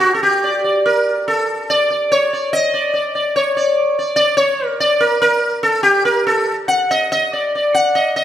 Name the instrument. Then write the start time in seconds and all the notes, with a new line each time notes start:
sitar
0.00 F#4
0.14 A4
0.23 G4
0.44 D5
0.64 D5
0.86 A#4
1.28 A4
1.70 D5
1.90 D5
2.12 C#5
2.33 D5
2.53 D#5
2.74 D5
2.94 D5
3.15 D5
3.36 C#5
3.57 D5
3.99 D5
4.16 D5
4.37 C#5
4.68 A#4
4.80 D5
5.00 A#4
5.22 A#4
5.63 A4
5.83 G4
6.05 A#4
6.27 A4
6.68 F#5
6.91 D#5
7.12 D#5
7.33 D5
7.55 D5
7.74 F#5
7.95 D#5
8.16 D#5